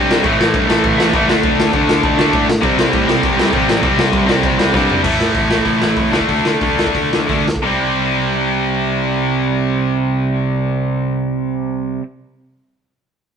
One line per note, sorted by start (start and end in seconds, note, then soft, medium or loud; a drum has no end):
0.00 0.19 G2 loud
0.00 0.22 C3 medium
0.00 0.23 G3 medium
0.00 0.24 C4 medium
0.11 snare loud
0.23 0.36 A1 medium
0.23 0.97 A2 medium
0.23 0.98 E3 loud
0.23 0.96 A3 loud
0.23 kick loud
0.23 crash medium
0.39 0.51 A1 loud
0.39 snare loud
0.54 0.66 G2 medium
0.54 kick loud
0.54 crash medium
0.68 0.81 A1 medium
0.68 1.11 A2 medium
0.68 1.13 E3 medium
0.68 1.12 A3 loud
0.68 snare loud
0.83 0.96 A1 loud
0.83 kick loud
0.83 crash medium
0.97 1.10 A1 medium
0.97 1.12 A2 medium
0.97 1.13 E3 medium
0.97 1.12 A3 medium
0.97 snare loud
1.13 1.29 G1 loud
1.13 1.27 A2 medium
1.13 1.28 E3 medium
1.13 1.27 A3 medium
1.13 kick loud
1.13 crash medium
1.27 1.40 D2 medium
1.27 2.01 D3 loud
1.27 2.02 A3 loud
1.27 2.03 D4 loud
1.27 snare loud
1.43 1.56 D2 medium
1.43 kick loud
1.43 crash medium
1.57 1.70 D2 loud
1.57 snare loud
1.73 1.85 D2 medium
1.73 2.17 D3 medium
1.73 2.17 A3 medium
1.73 2.16 D4 medium
1.73 kick loud
1.73 crash medium
1.87 2.00 D2 loud
1.87 snare loud
2.02 2.16 D2 loud
2.02 2.17 D3 medium
2.02 2.18 A3 medium
2.02 2.16 D4 loud
2.02 kick loud
2.02 crash medium
2.17 2.30 D2 loud
2.17 2.49 D3 medium
2.17 2.48 A3 medium
2.17 2.47 D4 medium
2.17 snare loud
2.33 2.58 A2 loud
2.33 kick loud
2.33 crash medium
2.50 snare loud
2.62 2.75 C2 medium
2.62 3.37 C3 medium
2.62 3.38 G3 medium
2.62 3.37 C4 loud
2.62 kick loud
2.62 crash medium
2.77 2.90 C2 loud
2.77 snare loud
2.93 3.06 A2 medium
2.93 kick loud
2.93 crash medium
3.07 3.20 C2 loud
3.07 3.50 C3 medium
3.07 3.53 G3 medium
3.07 3.55 C4 loud
3.07 snare loud
3.23 3.35 C2 loud
3.23 kick loud
3.23 crash medium
3.36 3.50 C2 medium
3.36 3.51 C3 medium
3.36 3.53 G3 medium
3.36 3.54 C4 loud
3.36 snare loud
3.52 3.66 A1 loud
3.52 3.80 C3 medium
3.52 3.81 G3 medium
3.52 3.83 C4 medium
3.52 kick loud
3.52 crash medium
3.67 3.80 A1 medium
3.67 snare loud
3.81 3.95 C2 medium
3.81 4.57 C3 medium
3.81 4.57 G3 loud
3.81 4.57 C4 loud
3.81 kick loud
3.81 crash medium
3.96 4.10 C2 medium
3.96 snare loud
4.13 4.25 C2 loud
4.13 kick loud
4.13 crash medium
4.26 4.40 C2 medium
4.26 4.71 C3 medium
4.26 4.73 G3 medium
4.26 4.72 C4 loud
4.26 snare loud
4.43 4.56 C2 loud
4.43 kick loud
4.43 crash medium
4.57 4.71 C2 medium
4.57 4.71 C3 medium
4.57 4.73 G3 medium
4.57 4.73 C4 loud
4.57 snare loud
4.73 4.99 G2 medium
4.73 5.02 C3 medium
4.73 5.03 G3 medium
4.73 5.04 C4 medium
4.73 kick loud
4.73 snare medium
4.90 floor tom loud
5.03 5.15 A1 medium
5.03 5.48 A2 medium
5.03 5.49 E3 loud
5.03 5.48 A3 medium
5.03 kick loud
5.03 crash loud
5.18 5.30 A2 medium
5.18 snare loud
5.34 5.57 A1 medium
5.34 kick loud
5.34 open hi-hat medium
5.49 6.11 A2 medium
5.49 6.11 E3 medium
5.49 6.11 A3 medium
5.49 snare loud
5.58 kick medium
5.65 5.76 A1 loud
5.65 kick medium
5.65 open hi-hat medium
5.79 5.91 A1 medium
5.79 snare loud
5.96 6.08 A1 medium
5.96 kick loud
5.96 open hi-hat medium
6.12 6.24 D2 medium
6.12 6.59 D3 medium
6.12 6.60 A3 loud
6.12 6.61 D4 loud
6.12 snare loud
6.21 kick medium
6.28 6.40 D2 medium
6.28 kick loud
6.28 open hi-hat medium
6.44 6.56 D3 medium
6.44 snare loud
6.60 6.85 D2 medium
6.60 7.44 D3 medium
6.60 7.45 A3 medium
6.60 7.46 D4 medium
6.60 kick loud
6.60 open hi-hat medium
6.79 snare loud
6.87 kick medium
6.94 7.06 D2 medium
6.94 kick loud
6.94 open hi-hat medium
7.11 7.23 D2 medium
7.11 snare loud
7.27 7.54 D2 medium
7.27 7.44 D3 medium
7.27 7.45 A3 medium
7.27 7.46 D4 medium
7.27 kick loud
7.27 open hi-hat medium
7.48 snare loud
7.56 kick medium
7.62 11.98 C2 medium
7.62 12.01 C3 medium
7.62 12.02 G3 medium
7.62 12.03 C4 medium